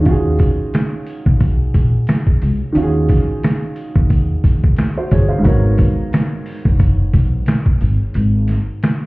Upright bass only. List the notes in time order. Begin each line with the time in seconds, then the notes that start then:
Already playing: D#2
1.26 B1
1.74 A#1
2.42 C#2
2.75 D#2
3.96 D#2
4.44 D#2
5.12 G1
5.45 G#1
6.65 F#1
7.14 B1
7.81 G#1
8.15 G#1